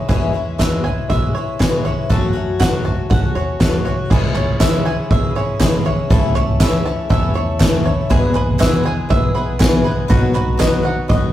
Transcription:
0.09 E2 B2 E3 G#3 C#4 E4 G#4, kick, floor tom
0.33 E3 G#3 C#4 E4
0.58 E2 B2 E3 G#3 C#4 E4 E5, kick, snare, clap
0.84 E3 G#3 C#4 E4 G#5, floor tom
1.09 B1 E3 G#3 C#4 E4 E5, kick, floor tom
1.35 E3 G#3 C#4 E4 C#5
1.59 E2 B2 E3 G#3 C#4 E4 G#4, kick, snare, clap
1.84 E3 G#3 C#4 E4 C#5, floor tom
2.09 F#2 C#3 F#3 A3 C#4 F#4 A4, kick, floor tom
2.33 F#3 A3 C#4 F#4
2.59 F#2 C#3 F#3 A3 C#4 F#4 F#5, kick, snare, clap
2.84 F#3 A3 C#4 F#4 A5, floor tom
3.10 C#2 F#3 A3 C#4 F#4 F#5, kick, floor tom
3.35 E2 F#3 A3 C#4 F#4 C#5
3.60 D#2 F#2 C#3 F#3 A3 C#4 F#4 A4, kick, snare, clap
3.85 C#2 F#3 A3 C#4 F#4 C#5, floor tom
4.10 C#2 C#3 E3 G#3 C#4 E4 G#4, kick, floor tom, crash
4.35 C#4 E4 C#5, clap, floor tom
4.39 G#3
4.48 floor tom
4.60 C#3 E3 G#3 C#4 E4 E5, kick, snare, clap, tambourine
4.85 C#4 E4 G#5
4.90 G#3
5.11 G#1 E3 G#3 C#4 E4 E5, kick, floor tom
5.35 G#3 C#4 E4 C#5
5.60 C#3 E3 G#3 C#4 E4 G#4, kick, snare, clap, tambourine
5.85 G#3 C#4 E4 C#5, floor tom
6.10 C#2 C#3 E3 A3 C#4 E4 A4, kick, floor tom
6.35 A3 C#4 E4 C#5, clap, floor tom
6.48 floor tom
6.60 C#3 E3 A3 C#4 E4 E5, kick, snare, clap, tambourine
6.85 A3 C#4 E4 A5
7.09 E2 E3 A3 C#4 E4 E5, kick, floor tom
7.34 A3 C#4 E4 C#5
7.59 C#3 E3 A3 C#4 E4 A4, kick, snare, clap, tambourine
7.84 C#4 E4 C#5, floor tom
7.88 A3
8.09 E2 B2 E3 G#3 B3 G#4, kick, floor tom
8.33 E3 G#3 B3 G#4 B4, clap, floor tom
8.49 floor tom
8.58 E2 B2 E3 G#3 B3 G#4 E5, kick, snare, clap, tambourine
8.83 E3 G#3 B3 G#4 G#5
9.09 B1 E3 G#3 B3 G#4 E5, kick, floor tom
9.34 E3 G#3 B3 G#4 B4
9.59 E2 B2 E3 G#3 B3 G#4, kick, snare, clap, tambourine
9.84 E3 G#3 B3 G#4 B4, floor tom
10.08 B1 B2 D#3 F#3 B3 D#4 F#4, kick, floor tom
10.33 B3 D#4 F#4 B4, clap, floor tom
10.48 floor tom
10.57 B2 F#3 B3 D#4 F#4 D#5, kick, snare, clap, tambourine
10.82 B3 D#4 F#4 F#5
11.08 F#2 F#3 B3 D#4 F#4 D#5, kick, floor tom

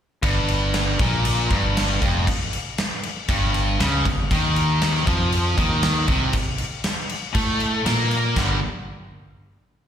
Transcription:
0.23 G1 G2, kick, crash
0.48 crash
0.74 snare, crash
0.99 A#1 A#2, kick, crash
1.25 crash
1.50 G1 G2, kick, crash
1.77 snare, crash
2.02 F1 F2, kick, crash
2.27 kick, crash
2.53 crash
2.78 snare, crash
3.03 crash
3.28 G1 G2, kick, crash
3.54 crash
3.79 C#2 C#3, snare, crash
4.05 G1 G2, kick, crash
4.31 D#2 D#3, kick, crash
4.56 crash
4.81 snare, crash
4.95 snare
5.07 F2 F3, kick, crash
5.32 crash
5.58 D#2 D#3, kick, crash
5.83 snare, crash
6.08 C2 C3, kick, crash
6.33 kick, crash
6.58 crash
6.84 snare, crash
7.09 crash
7.34 A2 A3, kick, crash
7.60 crash
7.86 A#2 A#3, snare, crash
8.11 crash
8.36 G1 G2 D3 G3, kick, snare, crash

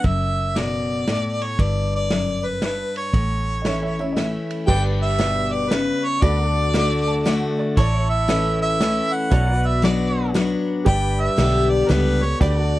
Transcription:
0.04 F#1 F#2 E5, kick, ride
0.56 B2 D5, snare, ride
1.07 A2, snare, ride
1.42 C#5, ride
1.59 G1 G2 D5, kick, ride
1.96 D5
2.10 F#2, snare, ride
2.45 B4
2.62 G2 B4, snare, ride
2.96 C#5, ride
3.14 A1 A2, kick, ride
3.62 E3 A3 C#5 D#5, snare, ride
3.66 C#4 E4 E5
3.82 C#5 E5
3.99 C#4 E4 C#5 E5
4.13 E3 D#5, snare, ride
4.17 A3 C#4 E4 E5
4.51 ride
4.67 G1 G2 G4 B4 D5 G5, kick, crash
5.02 E5
5.19 B2, snare, closed hi-hat
5.53 D5
5.70 C#3 B4, snare, closed hi-hat
6.04 C#5
6.22 D2 D3 F#4 A4 B4 D5, kick, closed hi-hat
6.49 A4
6.74 D3 A3 D4 F#4, snare, closed hi-hat
7.08 A5
7.26 D3 A3 D4 F#4 F#5, snare, closed hi-hat
7.59 D5
7.77 A1 A2 E4 A4 C#5 D5, kick, closed hi-hat
7.99 C#5
8.10 E5
8.28 E3 A3 C#4 E4, snare, closed hi-hat
8.62 E5
8.80 E3 A3 C#4 E4, snare, closed hi-hat
9.13 F#5
9.30 B1 B2 E4 F#4 A4 B4 C#5 D5, kick, closed hi-hat
9.53 F#4 D5
9.57 B4
9.66 E5
9.82 F#3 B3 D4 F#4 D5, snare, closed hi-hat
10.34 F#3 B3 D4 F#4, snare, closed hi-hat
10.85 G1 G2 G4 B4 D5 G5, kick, closed hi-hat
11.20 E5
11.36 B1 D3 G3 B3 G4, snare, closed hi-hat
11.70 D5
11.86 C#2 D3 G3 A#4 B4, snare, closed hi-hat
11.90 B3 G4
12.22 B3 G4 C#5
12.40 D2 D3 F#4 G4 A4 B4 D5, kick, closed hi-hat
12.61 F#4
12.66 A4

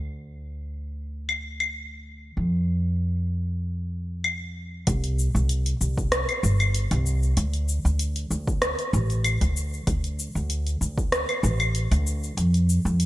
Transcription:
Already playing: D2
1.29 claves
1.60 claves
2.37 F2
4.24 claves
4.87 C2, kick, closed hi-hat, shaker
5.04 closed hi-hat, shaker
5.19 shaker
5.35 C2, shaker
5.49 closed hi-hat, shaker
5.66 closed hi-hat, shaker
5.81 C2, shaker
5.98 kick, shaker
6.12 cross-stick, closed hi-hat, shaker
6.29 closed hi-hat, claves, shaker
6.43 G1, shaker
6.60 closed hi-hat, claves, shaker
6.75 closed hi-hat, shaker
6.91 C2, closed hi-hat, shaker
7.06 shaker
7.23 shaker
7.37 D2, closed hi-hat, shaker
7.54 closed hi-hat, shaker
7.69 shaker
7.85 D2, shaker
7.99 closed hi-hat, shaker
8.16 closed hi-hat, shaker
8.31 D2, shaker
8.48 kick, shaker
8.62 cross-stick, closed hi-hat, shaker
8.79 closed hi-hat, shaker
8.93 A1, shaker
9.10 closed hi-hat, shaker
9.24 closed hi-hat, claves, shaker
9.41 D2, kick, closed hi-hat, shaker
9.57 shaker
9.73 shaker
9.87 D2, kick, closed hi-hat, shaker
10.04 closed hi-hat, shaker
10.19 shaker
10.35 D2, shaker
10.50 closed hi-hat, shaker
10.67 closed hi-hat, shaker
10.81 D2, shaker
10.98 kick, shaker
11.12 cross-stick, closed hi-hat, shaker
11.29 closed hi-hat, claves, shaker
11.43 A1, shaker
11.60 closed hi-hat, claves, shaker
11.75 closed hi-hat, shaker
11.91 D2, closed hi-hat, shaker
12.07 shaker
12.23 shaker
12.37 F2, closed hi-hat, shaker
12.54 closed hi-hat, shaker
12.69 shaker
12.85 F2, shaker
13.00 closed hi-hat, shaker

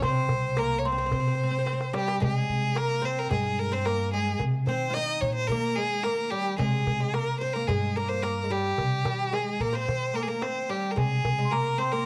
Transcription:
0.02 C3 C4 C5 C6, darbuka dum
0.15 darbuka ka
0.29 C2, darbuka dum
0.43 darbuka ka
0.57 A#3 A#4 A#5, darbuka tek
0.78 C#5
0.85 C4 C5 C6
0.92 C4
0.98 C4, darbuka ka
1.06 C4
1.12 C3 C4, darbuka dum
1.20 C4
1.27 C4
1.35 C4, darbuka ka
1.43 C4
1.51 C4
1.59 C4
1.66 C4, darbuka tek
1.73 C4
1.81 darbuka ka
1.93 G3 G4, darbuka tek
2.08 darbuka ka
2.20 C3 G#3 G#4, darbuka dum
2.36 darbuka ka
2.49 C3
2.75 A#3 A#4, darbuka tek
3.02 C4 C5
3.18 A#4, darbuka ka
3.31 G2 G#3 G#4, darbuka dum
3.59 A#4
3.72 C4 C5
3.85 A#3 A#4, darbuka tek
3.99 darbuka ka
4.13 G#3 G#4
4.40 C3, darbuka dum
4.54 darbuka ka
4.67 D#3 C4 C5, darbuka dum
4.90 F4 D#5
4.94 D#4, darbuka tek
5.21 A#2 C#5
5.34 C5, darbuka ka
5.47 D#3 A#4, darbuka dum
5.52 A#3
5.75 G#3 G#4
6.03 A#3 A#4, darbuka tek
6.18 darbuka ka
6.30 G3 G4
6.45 darbuka ka
6.58 C3 G#3 G#4, darbuka dum
6.73 darbuka ka
6.87 C3, darbuka dum
7.00 G#3
7.13 A#3 A#4, darbuka tek
7.40 C4 C5
7.53 A#3 A#4, darbuka ka
7.67 G2 G#3 G#4, darbuka dum
7.95 A#3 A#4
8.09 C5
8.22 A#3 A#4, darbuka tek
8.37 darbuka ka
8.44 G#3
8.50 G3 G4
8.64 darbuka ka
8.78 C3, darbuka dum
8.92 darbuka ka
9.05 D#3 G3, darbuka dum
9.20 darbuka ka
9.32 G#3 G#4, darbuka tek
9.60 A#2 A#3 A#4
9.73 C4 C5, darbuka ka
9.88 D#3, darbuka dum
10.14 A#3 A#4
10.23 G#4
10.27 A#3 A#4
10.41 C4 C5, darbuka tek
10.56 darbuka ka
10.69 G3 G4, darbuka ka
10.91 A#4
10.96 C3 G#3 G#4 G#5, darbuka dum
11.11 darbuka ka
11.25 C3, darbuka dum
11.38 G#3
11.45 C6
11.51 A#3 A#4 A#5, darbuka tek
11.78 C4 C5 C6
11.92 A#3 A#4, darbuka ka

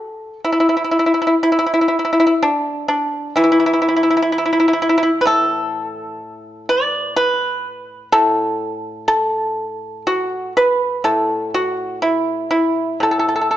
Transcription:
Already playing: E4 A4
0.44 E4
0.52 E4
0.60 E4
0.69 E4
0.77 E4
0.84 E4
0.91 E4
0.99 E4
1.06 E4
1.14 E4
1.22 E4
1.27 E4
1.43 E4
1.52 E4
1.59 E4
1.66 E4
1.74 E4
1.81 E4
1.88 E4
1.99 E4
2.05 E4
2.13 E4
2.20 E4
2.27 E4
2.43 D4
2.88 D4
3.36 E3 E4
3.44 E4
3.52 E4
3.60 E4
3.66 E4
3.73 E4
3.82 E4
3.89 E4
3.96 E4
4.03 E4
4.10 E4
4.17 E4
4.22 E4
4.32 E4
4.38 E4
4.46 E4
4.53 E4
4.60 E4
4.68 E4
4.73 E4
4.82 E4
4.89 E4
4.98 E4
5.03 E4
5.21 B4
5.25 A2 A4
6.69 D5
7.16 B4
8.12 A2 A4
9.08 A4
10.07 F#4
10.57 B4
11.04 A2 A4
11.54 F#4
12.02 E4
12.51 E4
13.00 A2 A4
13.11 A4
13.19 A4
13.29 A4
13.36 A4
13.41 A4
13.51 A4

